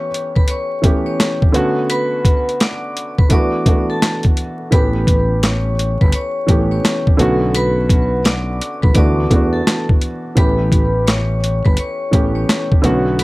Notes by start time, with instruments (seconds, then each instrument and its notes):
Already playing: upright piano E3 A3 B3 C#4 G4, vibraphone C#5 C#6
0.14 closed hi-hat
0.36 vibraphone B4 B5, kick
0.48 vibraphone C#5 C#6, closed hi-hat
0.82 upright piano E3 A3 B3 C#4 G4, kick, closed hi-hat
1.06 vibraphone C#5 C#6
1.20 snare, clap, closed hi-hat
1.42 kick
1.52 upright piano D3 A3 B3 C#4 F#4, closed hi-hat
1.90 vibraphone B4 B5, closed hi-hat
2.25 kick, closed hi-hat
2.49 closed hi-hat
2.60 vibraphone D5 D6, snare, clap, closed hi-hat
2.97 closed hi-hat
3.18 vibraphone B4 B5, kick
3.29 upright piano E3 A3 B3 D4 F#4, vibraphone D5 D6, kick, closed hi-hat
3.65 upright piano E3 A3 B3 D4 F#4, kick, closed hi-hat
3.90 vibraphone A4 A5
4.02 snare, clap, closed hi-hat
4.23 kick, closed hi-hat
4.37 closed hi-hat
4.71 fretless electric bass A1, upright piano E3 A3 B3 C#4 G4, vibraphone B4 B5, kick, closed hi-hat
5.07 kick, closed hi-hat
5.43 vibraphone C#5 C#6, snare, clap, closed hi-hat
5.79 closed hi-hat
6.01 fretless electric bass G1, vibraphone B4 B5, kick
6.12 vibraphone C#5 C#6, closed hi-hat
6.47 fretless electric bass A1, upright piano E3 A3 B3 C#4 G4, kick, closed hi-hat
6.71 vibraphone C#5 C#6
6.85 snare, clap, closed hi-hat
7.07 kick
7.17 fretless electric bass B1, upright piano D3 A3 B3 C#4 F#4, closed hi-hat
7.54 vibraphone B4 B5, closed hi-hat
7.89 kick, closed hi-hat
8.25 vibraphone D5 D6, snare, clap, closed hi-hat
8.62 closed hi-hat
8.82 fretless electric bass B1, vibraphone B4 B5, kick
8.94 fretless electric bass D2, upright piano E3 A3 B3 D4 F#4, vibraphone D5 D6, kick, closed hi-hat
9.30 fretless electric bass E2, upright piano E3 A3 B3 D4 F#4, kick, closed hi-hat
9.53 vibraphone A4 A5
9.67 snare, clap, closed hi-hat
9.89 kick
10.02 closed hi-hat
10.35 fretless electric bass A1, upright piano E3 A3 B3 C#4 G4, vibraphone B4 B5, kick, closed hi-hat
10.72 kick, closed hi-hat
11.07 vibraphone C#5 C#6, snare, clap, closed hi-hat
11.44 closed hi-hat
11.65 fretless electric bass G1, vibraphone B4 B5, kick
11.77 vibraphone C#5 C#6, closed hi-hat
12.11 fretless electric bass A1, upright piano E3 A3 B3 C#4 G4, kick, closed hi-hat
12.35 vibraphone C#5 C#6
12.49 snare, clap, closed hi-hat
12.72 kick
12.82 fretless electric bass B1, upright piano D3 A3 B3 C#4 F#4, closed hi-hat
13.19 vibraphone B4 B5, closed hi-hat